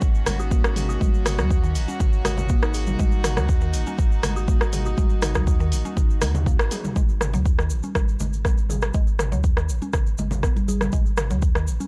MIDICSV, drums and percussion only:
0, 0, Header, 1, 2, 480
1, 0, Start_track
1, 0, Tempo, 495868
1, 979, Time_signature, 4, 2, 24, 8
1, 11493, End_track
2, 0, Start_track
2, 0, Title_t, "Drums"
2, 14, Note_on_c, 9, 82, 52
2, 17, Note_on_c, 9, 36, 121
2, 111, Note_off_c, 9, 82, 0
2, 114, Note_off_c, 9, 36, 0
2, 141, Note_on_c, 9, 82, 28
2, 238, Note_off_c, 9, 82, 0
2, 255, Note_on_c, 9, 64, 96
2, 256, Note_on_c, 9, 37, 92
2, 256, Note_on_c, 9, 46, 84
2, 256, Note_on_c, 9, 82, 95
2, 267, Note_on_c, 9, 63, 73
2, 352, Note_off_c, 9, 37, 0
2, 352, Note_off_c, 9, 46, 0
2, 352, Note_off_c, 9, 64, 0
2, 353, Note_off_c, 9, 82, 0
2, 363, Note_off_c, 9, 63, 0
2, 384, Note_on_c, 9, 82, 39
2, 480, Note_off_c, 9, 82, 0
2, 497, Note_on_c, 9, 36, 124
2, 498, Note_on_c, 9, 82, 59
2, 501, Note_on_c, 9, 63, 66
2, 594, Note_off_c, 9, 36, 0
2, 595, Note_off_c, 9, 82, 0
2, 597, Note_off_c, 9, 63, 0
2, 622, Note_on_c, 9, 37, 97
2, 623, Note_on_c, 9, 82, 25
2, 719, Note_off_c, 9, 37, 0
2, 720, Note_off_c, 9, 82, 0
2, 737, Note_on_c, 9, 46, 89
2, 737, Note_on_c, 9, 47, 81
2, 737, Note_on_c, 9, 63, 59
2, 744, Note_on_c, 9, 82, 91
2, 833, Note_off_c, 9, 63, 0
2, 834, Note_off_c, 9, 46, 0
2, 834, Note_off_c, 9, 47, 0
2, 841, Note_off_c, 9, 82, 0
2, 867, Note_on_c, 9, 82, 43
2, 964, Note_off_c, 9, 82, 0
2, 977, Note_on_c, 9, 36, 113
2, 979, Note_on_c, 9, 63, 102
2, 986, Note_on_c, 9, 82, 50
2, 1074, Note_off_c, 9, 36, 0
2, 1076, Note_off_c, 9, 63, 0
2, 1083, Note_off_c, 9, 82, 0
2, 1104, Note_on_c, 9, 82, 27
2, 1201, Note_off_c, 9, 82, 0
2, 1217, Note_on_c, 9, 37, 92
2, 1217, Note_on_c, 9, 46, 88
2, 1217, Note_on_c, 9, 47, 95
2, 1218, Note_on_c, 9, 82, 84
2, 1314, Note_off_c, 9, 37, 0
2, 1314, Note_off_c, 9, 46, 0
2, 1314, Note_off_c, 9, 47, 0
2, 1315, Note_off_c, 9, 82, 0
2, 1341, Note_on_c, 9, 64, 93
2, 1343, Note_on_c, 9, 37, 87
2, 1343, Note_on_c, 9, 82, 35
2, 1345, Note_on_c, 9, 63, 66
2, 1438, Note_off_c, 9, 64, 0
2, 1440, Note_off_c, 9, 37, 0
2, 1440, Note_off_c, 9, 82, 0
2, 1442, Note_off_c, 9, 63, 0
2, 1457, Note_on_c, 9, 36, 114
2, 1458, Note_on_c, 9, 82, 53
2, 1554, Note_off_c, 9, 36, 0
2, 1554, Note_off_c, 9, 82, 0
2, 1588, Note_on_c, 9, 82, 26
2, 1685, Note_off_c, 9, 82, 0
2, 1696, Note_on_c, 9, 82, 85
2, 1697, Note_on_c, 9, 46, 87
2, 1793, Note_off_c, 9, 82, 0
2, 1794, Note_off_c, 9, 46, 0
2, 1823, Note_on_c, 9, 63, 63
2, 1824, Note_on_c, 9, 82, 44
2, 1920, Note_off_c, 9, 63, 0
2, 1920, Note_off_c, 9, 82, 0
2, 1937, Note_on_c, 9, 64, 113
2, 1938, Note_on_c, 9, 36, 121
2, 1938, Note_on_c, 9, 82, 52
2, 2034, Note_off_c, 9, 64, 0
2, 2035, Note_off_c, 9, 36, 0
2, 2035, Note_off_c, 9, 82, 0
2, 2061, Note_on_c, 9, 82, 27
2, 2158, Note_off_c, 9, 82, 0
2, 2177, Note_on_c, 9, 37, 85
2, 2177, Note_on_c, 9, 46, 86
2, 2179, Note_on_c, 9, 64, 93
2, 2182, Note_on_c, 9, 82, 85
2, 2274, Note_off_c, 9, 37, 0
2, 2274, Note_off_c, 9, 46, 0
2, 2276, Note_off_c, 9, 64, 0
2, 2279, Note_off_c, 9, 82, 0
2, 2298, Note_on_c, 9, 64, 106
2, 2302, Note_on_c, 9, 47, 87
2, 2306, Note_on_c, 9, 82, 41
2, 2395, Note_off_c, 9, 64, 0
2, 2399, Note_off_c, 9, 47, 0
2, 2402, Note_off_c, 9, 82, 0
2, 2410, Note_on_c, 9, 82, 51
2, 2418, Note_on_c, 9, 36, 118
2, 2507, Note_off_c, 9, 82, 0
2, 2515, Note_off_c, 9, 36, 0
2, 2540, Note_on_c, 9, 82, 25
2, 2543, Note_on_c, 9, 37, 93
2, 2637, Note_off_c, 9, 82, 0
2, 2640, Note_off_c, 9, 37, 0
2, 2651, Note_on_c, 9, 82, 83
2, 2657, Note_on_c, 9, 46, 90
2, 2747, Note_off_c, 9, 82, 0
2, 2753, Note_off_c, 9, 46, 0
2, 2776, Note_on_c, 9, 82, 40
2, 2782, Note_on_c, 9, 63, 102
2, 2783, Note_on_c, 9, 47, 75
2, 2873, Note_off_c, 9, 82, 0
2, 2878, Note_off_c, 9, 63, 0
2, 2880, Note_off_c, 9, 47, 0
2, 2896, Note_on_c, 9, 82, 52
2, 2898, Note_on_c, 9, 36, 111
2, 2899, Note_on_c, 9, 63, 102
2, 2993, Note_off_c, 9, 82, 0
2, 2995, Note_off_c, 9, 36, 0
2, 2995, Note_off_c, 9, 63, 0
2, 3015, Note_on_c, 9, 82, 27
2, 3112, Note_off_c, 9, 82, 0
2, 3137, Note_on_c, 9, 37, 86
2, 3137, Note_on_c, 9, 46, 92
2, 3137, Note_on_c, 9, 47, 97
2, 3137, Note_on_c, 9, 82, 96
2, 3234, Note_off_c, 9, 37, 0
2, 3234, Note_off_c, 9, 46, 0
2, 3234, Note_off_c, 9, 47, 0
2, 3234, Note_off_c, 9, 82, 0
2, 3262, Note_on_c, 9, 37, 82
2, 3264, Note_on_c, 9, 82, 34
2, 3265, Note_on_c, 9, 63, 60
2, 3266, Note_on_c, 9, 64, 86
2, 3359, Note_off_c, 9, 37, 0
2, 3360, Note_off_c, 9, 82, 0
2, 3361, Note_off_c, 9, 63, 0
2, 3363, Note_off_c, 9, 64, 0
2, 3377, Note_on_c, 9, 82, 48
2, 3378, Note_on_c, 9, 36, 112
2, 3473, Note_off_c, 9, 82, 0
2, 3475, Note_off_c, 9, 36, 0
2, 3497, Note_on_c, 9, 82, 26
2, 3594, Note_off_c, 9, 82, 0
2, 3615, Note_on_c, 9, 82, 94
2, 3617, Note_on_c, 9, 46, 89
2, 3712, Note_off_c, 9, 82, 0
2, 3713, Note_off_c, 9, 46, 0
2, 3742, Note_on_c, 9, 82, 35
2, 3751, Note_on_c, 9, 63, 66
2, 3839, Note_off_c, 9, 82, 0
2, 3848, Note_off_c, 9, 63, 0
2, 3858, Note_on_c, 9, 36, 117
2, 3858, Note_on_c, 9, 82, 53
2, 3954, Note_off_c, 9, 36, 0
2, 3955, Note_off_c, 9, 82, 0
2, 3985, Note_on_c, 9, 82, 24
2, 4082, Note_off_c, 9, 82, 0
2, 4097, Note_on_c, 9, 37, 87
2, 4097, Note_on_c, 9, 46, 86
2, 4097, Note_on_c, 9, 63, 68
2, 4098, Note_on_c, 9, 82, 82
2, 4099, Note_on_c, 9, 64, 87
2, 4194, Note_off_c, 9, 37, 0
2, 4194, Note_off_c, 9, 46, 0
2, 4194, Note_off_c, 9, 63, 0
2, 4195, Note_off_c, 9, 82, 0
2, 4196, Note_off_c, 9, 64, 0
2, 4224, Note_on_c, 9, 82, 42
2, 4320, Note_off_c, 9, 82, 0
2, 4335, Note_on_c, 9, 63, 62
2, 4337, Note_on_c, 9, 36, 119
2, 4337, Note_on_c, 9, 82, 54
2, 4432, Note_off_c, 9, 63, 0
2, 4434, Note_off_c, 9, 36, 0
2, 4434, Note_off_c, 9, 82, 0
2, 4462, Note_on_c, 9, 37, 95
2, 4469, Note_on_c, 9, 82, 24
2, 4559, Note_off_c, 9, 37, 0
2, 4566, Note_off_c, 9, 82, 0
2, 4577, Note_on_c, 9, 46, 94
2, 4577, Note_on_c, 9, 47, 84
2, 4577, Note_on_c, 9, 63, 63
2, 4577, Note_on_c, 9, 82, 96
2, 4673, Note_off_c, 9, 46, 0
2, 4673, Note_off_c, 9, 47, 0
2, 4674, Note_off_c, 9, 63, 0
2, 4674, Note_off_c, 9, 82, 0
2, 4698, Note_on_c, 9, 82, 37
2, 4795, Note_off_c, 9, 82, 0
2, 4817, Note_on_c, 9, 36, 111
2, 4818, Note_on_c, 9, 82, 51
2, 4820, Note_on_c, 9, 63, 95
2, 4914, Note_off_c, 9, 36, 0
2, 4915, Note_off_c, 9, 82, 0
2, 4917, Note_off_c, 9, 63, 0
2, 4933, Note_on_c, 9, 82, 26
2, 5030, Note_off_c, 9, 82, 0
2, 5053, Note_on_c, 9, 82, 84
2, 5056, Note_on_c, 9, 37, 92
2, 5056, Note_on_c, 9, 46, 90
2, 5056, Note_on_c, 9, 47, 95
2, 5150, Note_off_c, 9, 82, 0
2, 5153, Note_off_c, 9, 37, 0
2, 5153, Note_off_c, 9, 46, 0
2, 5153, Note_off_c, 9, 47, 0
2, 5173, Note_on_c, 9, 64, 90
2, 5177, Note_on_c, 9, 82, 37
2, 5182, Note_on_c, 9, 36, 59
2, 5182, Note_on_c, 9, 37, 88
2, 5186, Note_on_c, 9, 63, 71
2, 5270, Note_off_c, 9, 64, 0
2, 5274, Note_off_c, 9, 82, 0
2, 5279, Note_off_c, 9, 36, 0
2, 5279, Note_off_c, 9, 37, 0
2, 5283, Note_off_c, 9, 63, 0
2, 5295, Note_on_c, 9, 82, 50
2, 5296, Note_on_c, 9, 36, 115
2, 5392, Note_off_c, 9, 82, 0
2, 5393, Note_off_c, 9, 36, 0
2, 5422, Note_on_c, 9, 82, 23
2, 5519, Note_off_c, 9, 82, 0
2, 5536, Note_on_c, 9, 46, 96
2, 5543, Note_on_c, 9, 82, 99
2, 5632, Note_off_c, 9, 46, 0
2, 5640, Note_off_c, 9, 82, 0
2, 5664, Note_on_c, 9, 63, 60
2, 5666, Note_on_c, 9, 82, 42
2, 5760, Note_off_c, 9, 63, 0
2, 5763, Note_off_c, 9, 82, 0
2, 5776, Note_on_c, 9, 36, 115
2, 5776, Note_on_c, 9, 64, 110
2, 5783, Note_on_c, 9, 82, 52
2, 5873, Note_off_c, 9, 36, 0
2, 5873, Note_off_c, 9, 64, 0
2, 5880, Note_off_c, 9, 82, 0
2, 5906, Note_on_c, 9, 82, 28
2, 6003, Note_off_c, 9, 82, 0
2, 6016, Note_on_c, 9, 37, 93
2, 6016, Note_on_c, 9, 46, 90
2, 6016, Note_on_c, 9, 64, 107
2, 6016, Note_on_c, 9, 82, 95
2, 6112, Note_off_c, 9, 64, 0
2, 6113, Note_off_c, 9, 37, 0
2, 6113, Note_off_c, 9, 46, 0
2, 6113, Note_off_c, 9, 82, 0
2, 6142, Note_on_c, 9, 47, 92
2, 6144, Note_on_c, 9, 64, 118
2, 6147, Note_on_c, 9, 82, 39
2, 6239, Note_off_c, 9, 47, 0
2, 6241, Note_off_c, 9, 64, 0
2, 6244, Note_off_c, 9, 82, 0
2, 6257, Note_on_c, 9, 36, 122
2, 6261, Note_on_c, 9, 82, 49
2, 6353, Note_off_c, 9, 36, 0
2, 6358, Note_off_c, 9, 82, 0
2, 6382, Note_on_c, 9, 37, 97
2, 6389, Note_on_c, 9, 82, 27
2, 6479, Note_off_c, 9, 37, 0
2, 6486, Note_off_c, 9, 82, 0
2, 6497, Note_on_c, 9, 46, 96
2, 6497, Note_on_c, 9, 48, 65
2, 6498, Note_on_c, 9, 82, 97
2, 6593, Note_off_c, 9, 46, 0
2, 6593, Note_off_c, 9, 48, 0
2, 6595, Note_off_c, 9, 82, 0
2, 6622, Note_on_c, 9, 47, 82
2, 6625, Note_on_c, 9, 82, 37
2, 6631, Note_on_c, 9, 63, 88
2, 6719, Note_off_c, 9, 47, 0
2, 6722, Note_off_c, 9, 82, 0
2, 6728, Note_off_c, 9, 63, 0
2, 6737, Note_on_c, 9, 36, 119
2, 6738, Note_on_c, 9, 82, 52
2, 6834, Note_off_c, 9, 36, 0
2, 6834, Note_off_c, 9, 82, 0
2, 6861, Note_on_c, 9, 82, 25
2, 6958, Note_off_c, 9, 82, 0
2, 6977, Note_on_c, 9, 37, 91
2, 6977, Note_on_c, 9, 47, 97
2, 6982, Note_on_c, 9, 82, 90
2, 7074, Note_off_c, 9, 37, 0
2, 7074, Note_off_c, 9, 47, 0
2, 7079, Note_off_c, 9, 82, 0
2, 7100, Note_on_c, 9, 64, 105
2, 7107, Note_on_c, 9, 82, 39
2, 7197, Note_off_c, 9, 64, 0
2, 7204, Note_off_c, 9, 82, 0
2, 7217, Note_on_c, 9, 36, 115
2, 7217, Note_on_c, 9, 82, 52
2, 7313, Note_off_c, 9, 82, 0
2, 7314, Note_off_c, 9, 36, 0
2, 7343, Note_on_c, 9, 37, 74
2, 7352, Note_on_c, 9, 82, 25
2, 7440, Note_off_c, 9, 37, 0
2, 7448, Note_off_c, 9, 82, 0
2, 7453, Note_on_c, 9, 82, 90
2, 7550, Note_off_c, 9, 82, 0
2, 7578, Note_on_c, 9, 82, 41
2, 7586, Note_on_c, 9, 63, 67
2, 7675, Note_off_c, 9, 82, 0
2, 7682, Note_off_c, 9, 63, 0
2, 7697, Note_on_c, 9, 36, 120
2, 7697, Note_on_c, 9, 37, 91
2, 7697, Note_on_c, 9, 63, 92
2, 7699, Note_on_c, 9, 82, 50
2, 7793, Note_off_c, 9, 63, 0
2, 7794, Note_off_c, 9, 36, 0
2, 7794, Note_off_c, 9, 37, 0
2, 7795, Note_off_c, 9, 82, 0
2, 7825, Note_on_c, 9, 82, 28
2, 7922, Note_off_c, 9, 82, 0
2, 7934, Note_on_c, 9, 82, 89
2, 7942, Note_on_c, 9, 64, 103
2, 8031, Note_off_c, 9, 82, 0
2, 8039, Note_off_c, 9, 64, 0
2, 8065, Note_on_c, 9, 82, 39
2, 8162, Note_off_c, 9, 82, 0
2, 8177, Note_on_c, 9, 36, 120
2, 8177, Note_on_c, 9, 37, 78
2, 8178, Note_on_c, 9, 63, 69
2, 8182, Note_on_c, 9, 82, 50
2, 8274, Note_off_c, 9, 36, 0
2, 8274, Note_off_c, 9, 37, 0
2, 8275, Note_off_c, 9, 63, 0
2, 8278, Note_off_c, 9, 82, 0
2, 8302, Note_on_c, 9, 82, 27
2, 8399, Note_off_c, 9, 82, 0
2, 8417, Note_on_c, 9, 47, 83
2, 8422, Note_on_c, 9, 63, 81
2, 8422, Note_on_c, 9, 82, 89
2, 8514, Note_off_c, 9, 47, 0
2, 8519, Note_off_c, 9, 63, 0
2, 8519, Note_off_c, 9, 82, 0
2, 8535, Note_on_c, 9, 82, 41
2, 8543, Note_on_c, 9, 37, 88
2, 8632, Note_off_c, 9, 82, 0
2, 8639, Note_off_c, 9, 37, 0
2, 8652, Note_on_c, 9, 82, 49
2, 8657, Note_on_c, 9, 36, 116
2, 8749, Note_off_c, 9, 82, 0
2, 8754, Note_off_c, 9, 36, 0
2, 8782, Note_on_c, 9, 82, 24
2, 8878, Note_off_c, 9, 82, 0
2, 8897, Note_on_c, 9, 37, 92
2, 8897, Note_on_c, 9, 47, 92
2, 8900, Note_on_c, 9, 82, 88
2, 8994, Note_off_c, 9, 37, 0
2, 8994, Note_off_c, 9, 47, 0
2, 8997, Note_off_c, 9, 82, 0
2, 9021, Note_on_c, 9, 64, 90
2, 9025, Note_on_c, 9, 82, 36
2, 9117, Note_off_c, 9, 64, 0
2, 9122, Note_off_c, 9, 82, 0
2, 9135, Note_on_c, 9, 82, 50
2, 9138, Note_on_c, 9, 36, 118
2, 9232, Note_off_c, 9, 82, 0
2, 9234, Note_off_c, 9, 36, 0
2, 9263, Note_on_c, 9, 37, 79
2, 9273, Note_on_c, 9, 82, 27
2, 9360, Note_off_c, 9, 37, 0
2, 9369, Note_off_c, 9, 82, 0
2, 9381, Note_on_c, 9, 82, 95
2, 9478, Note_off_c, 9, 82, 0
2, 9504, Note_on_c, 9, 63, 68
2, 9506, Note_on_c, 9, 82, 38
2, 9601, Note_off_c, 9, 63, 0
2, 9602, Note_off_c, 9, 82, 0
2, 9615, Note_on_c, 9, 64, 122
2, 9615, Note_on_c, 9, 82, 57
2, 9617, Note_on_c, 9, 37, 89
2, 9618, Note_on_c, 9, 36, 121
2, 9712, Note_off_c, 9, 64, 0
2, 9712, Note_off_c, 9, 82, 0
2, 9713, Note_off_c, 9, 37, 0
2, 9714, Note_off_c, 9, 36, 0
2, 9743, Note_on_c, 9, 82, 28
2, 9840, Note_off_c, 9, 82, 0
2, 9854, Note_on_c, 9, 82, 90
2, 9862, Note_on_c, 9, 64, 98
2, 9863, Note_on_c, 9, 63, 59
2, 9951, Note_off_c, 9, 82, 0
2, 9958, Note_off_c, 9, 64, 0
2, 9960, Note_off_c, 9, 63, 0
2, 9978, Note_on_c, 9, 64, 117
2, 9983, Note_on_c, 9, 47, 85
2, 9986, Note_on_c, 9, 82, 46
2, 9987, Note_on_c, 9, 63, 68
2, 10075, Note_off_c, 9, 64, 0
2, 10079, Note_off_c, 9, 47, 0
2, 10083, Note_off_c, 9, 63, 0
2, 10083, Note_off_c, 9, 82, 0
2, 10097, Note_on_c, 9, 37, 80
2, 10098, Note_on_c, 9, 36, 124
2, 10100, Note_on_c, 9, 82, 59
2, 10194, Note_off_c, 9, 37, 0
2, 10195, Note_off_c, 9, 36, 0
2, 10197, Note_off_c, 9, 82, 0
2, 10225, Note_on_c, 9, 63, 115
2, 10230, Note_on_c, 9, 82, 25
2, 10322, Note_off_c, 9, 63, 0
2, 10327, Note_off_c, 9, 82, 0
2, 10343, Note_on_c, 9, 82, 103
2, 10344, Note_on_c, 9, 63, 104
2, 10439, Note_off_c, 9, 82, 0
2, 10440, Note_off_c, 9, 63, 0
2, 10462, Note_on_c, 9, 63, 103
2, 10463, Note_on_c, 9, 37, 91
2, 10463, Note_on_c, 9, 47, 78
2, 10469, Note_on_c, 9, 82, 41
2, 10559, Note_off_c, 9, 63, 0
2, 10560, Note_off_c, 9, 37, 0
2, 10560, Note_off_c, 9, 47, 0
2, 10565, Note_off_c, 9, 82, 0
2, 10572, Note_on_c, 9, 82, 57
2, 10578, Note_on_c, 9, 36, 118
2, 10669, Note_off_c, 9, 82, 0
2, 10675, Note_off_c, 9, 36, 0
2, 10704, Note_on_c, 9, 82, 25
2, 10801, Note_off_c, 9, 82, 0
2, 10813, Note_on_c, 9, 82, 86
2, 10817, Note_on_c, 9, 37, 99
2, 10817, Note_on_c, 9, 47, 91
2, 10909, Note_off_c, 9, 82, 0
2, 10914, Note_off_c, 9, 37, 0
2, 10914, Note_off_c, 9, 47, 0
2, 10942, Note_on_c, 9, 64, 90
2, 10944, Note_on_c, 9, 82, 38
2, 11039, Note_off_c, 9, 64, 0
2, 11041, Note_off_c, 9, 82, 0
2, 11054, Note_on_c, 9, 82, 50
2, 11058, Note_on_c, 9, 36, 121
2, 11151, Note_off_c, 9, 82, 0
2, 11155, Note_off_c, 9, 36, 0
2, 11183, Note_on_c, 9, 37, 83
2, 11191, Note_on_c, 9, 82, 25
2, 11280, Note_off_c, 9, 37, 0
2, 11288, Note_off_c, 9, 82, 0
2, 11301, Note_on_c, 9, 82, 87
2, 11398, Note_off_c, 9, 82, 0
2, 11427, Note_on_c, 9, 63, 69
2, 11427, Note_on_c, 9, 82, 43
2, 11493, Note_off_c, 9, 63, 0
2, 11493, Note_off_c, 9, 82, 0
2, 11493, End_track
0, 0, End_of_file